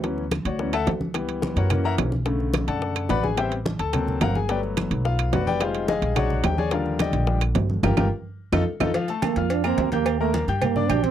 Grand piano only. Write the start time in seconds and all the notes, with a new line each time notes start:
0.04 E3 F#3 B3 C#4
0.46 F#4 C#5 D5 F#5
0.59 E3 F#3 B3 C#4
0.73 A4 E5 F#5 A5
1.14 E3 G3 B3
1.57 F#4 A#4 C#5 F#5
1.70 E3 A#3 C#4
1.85 A#4 E5 F#5 A#5
2.25 C#3 D3 A3
2.68 A4 D5 F#5 A5
3.10 B4 D5 F#5 B5
3.23 G#4 G#5
3.37 G3 B3 C4 G4 C5 E5 G5
3.79 A4 A5
3.93 F#3 A#3 C4
4.22 A#4 F5 F#5 A#5
4.35 G#4 G#5
4.49 F#3 A3 B3 G4 B4 D5 G5
5.05 F4 F5
5.33 F#4 B4 D5 F#5
5.47 G4 B4 D5 G5
5.61 G3 G#3 D#4 F4 G#4 C5 F5
5.89 G#4 D#5 F5 G#5
6.16 F#3 G#3 D4 F#4 C#5 D5 F#5
6.45 G4 G5
6.58 G#4 C#5 D5 G#5
6.72 D3 F3 G3 F4 A#4 D5 F5
7.00 G4 D5 D#5 G5
7.28 F3 G3 D4
7.84 F4 G4 A#4
7.97 F4 G4 A#4
8.53 D#4 F4 A4
8.81 D#4 F4 A4
8.95 F3 F4 F5
9.09 A3 A4 A5
9.37 F4 F5 F6
9.64 A#3 A#4 A#5
9.93 G4 G5 G6
10.21 A#3 A#4 A#5
10.48 G4 G5 G6
10.76 D4 D5 D6
10.90 G4 G5 G6